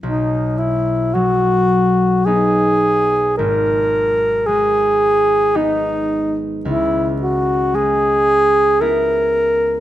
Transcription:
<<
  \new Staff \with { instrumentName = "Alto saxophone" } { \time 3/4 \key b \major \tempo 4 = 55 dis'8 e'8 fis'4 gis'4 | ais'4 gis'4 dis'8. r16 | e'8 fis'8 gis'4 ais'4 | }
  \new Staff \with { instrumentName = "Harp" } { \time 3/4 \key b \major b,,4 fis4 <b dis'>4 | gis,,4 gis4 <b dis'>4 | cis,4 gis4 <b e'>4 | }
>>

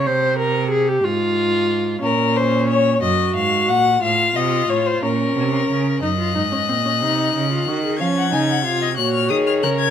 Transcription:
<<
  \new Staff \with { instrumentName = "Violin" } { \time 6/8 \key bes \minor \tempo 4. = 61 r2. | r2. | r2. | ges'''2. |
aes'''4. ges'''16 f'''16 ees'''16 f'''16 ges'''16 aes'''16 | }
  \new Staff \with { instrumentName = "Violin" } { \time 6/8 \key bes \minor r2. | bes'8 c''8 des''8 ees''8 f''8 ges''8 | f''8 ees''8 des''16 c''16 bes'4. | ees''2. |
f''16 ges''16 aes''16 ges''16 f''16 ees''16 des''4. | }
  \new Staff \with { instrumentName = "Viola" } { \time 6/8 \key bes \minor c''8 bes'8 aes'16 g'16 f'4. | des'4. ges'4. | f'4. des'4. | ees'16 f'16 ees'16 des'16 c'16 des'16 ees'8. f'16 ges'16 aes'16 |
des'8 ees'8 f'8 ges'8 aes'8 bes'8 | }
  \new Staff \with { instrumentName = "Cello" } { \clef bass \time 6/8 \key bes \minor c4. aes,4. | bes,4. ges,8 aes,8 bes,8 | a,8 c8 a,8 bes,8 c8 des8 | ges,8 aes,8 bes,8 c8 des8 ees8 |
f8 des8 c8 bes,8 ees8 des8 | }
>>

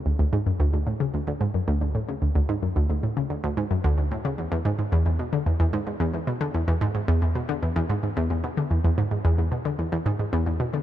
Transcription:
\new Staff \with { instrumentName = "Synth arpeggio sound" } { \clef bass \time 4/4 \key e \mixolydian \tempo 4 = 111 d,16 d,16 gis,16 fis,16 d,16 d,16 a,16 cis16 d,16 d,16 gis,16 fis,16 d,16 d,16 a,16 cis16 | d,16 d,16 gis,16 fis,16 d,16 d,16 a,16 cis16 d,16 d,16 gis,16 fis,16 d,16 d,16 a,16 cis16 | e,16 e,16 gis,16 gis,16 e,16 e,16 b,16 d16 e,16 e,16 gis,16 gis,16 e,16 e,16 b,16 d16 | e,16 e,16 gis,16 gis,16 e,16 e,16 b,16 d16 e,16 e,16 gis,16 gis,16 e,16 e,16 b,16 d16 |
e,16 e,16 gis,16 gis,16 e,16 e,16 b,16 d16 e,16 e,16 gis,16 gis,16 e,16 e,16 b,16 d16 | }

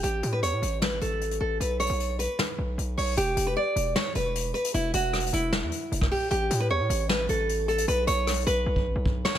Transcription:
<<
  \new Staff \with { instrumentName = "Nylon-string guitar" } { \time 4/4 \key e \dorian \tempo 4 = 153 g'8. b'16 cis''4 b'8 a'4 a'8 | b'8 cis''4 b'2 cis''8 | g'8. b'16 d''4 cis''8 b'4 b'8 | e'8 fis'4 e'2 g'8 |
g'8. b'16 cis''4 b'8 a'4 a'8 | b'8 cis''4 b'2 cis''8 | }
  \new Staff \with { instrumentName = "808-style bass" } { \clef bass \time 4/4 \key e \dorian a,,8 a,8 e,16 a,16 a,,4 a,,4 a,,8 | b,,8. b,,4 r8. b,,8 b,,8 b,,8 | e,,8 e,,8 r8 e,,8 r8 e,,4 r8 | e,,8 e,,4 e,,8. e,16 r8 e,,8 r8 |
a,,8 a,8 e,16 a,16 a,,4 a,,4. | b,,8 b,,4 b,,8 b,,8 a,,16 b,,8. r8 | }
  \new DrumStaff \with { instrumentName = "Drums" } \drummode { \time 4/4 hh8 hh8 hh8 hh8 <hh sn>8 hh8 hh16 hh8. | \tuplet 3/2 { hh16 r16 r16 hh16 hh16 hh16 } hh8 hh8 <hh sn>4 hh8 hho8 | hh8 hh8 r8 hh8 sn8 hh8 hh8 hh16 hh16 | hh8 hh8 \tuplet 3/2 { <hh ss>16 hh16 hh16 hh16 r16 r16 } sn8 hh8 hh16 <bd ss>16 hho8 |
hh8 hh8 r8 hh8 sn8 hh8 hh8 hh16 hh16 | hh8 hh8 \tuplet 3/2 { <hh ss>16 hh16 hh16 hh16 r16 r16 } r16 bd8. bd8 sn16 sn16 | }
>>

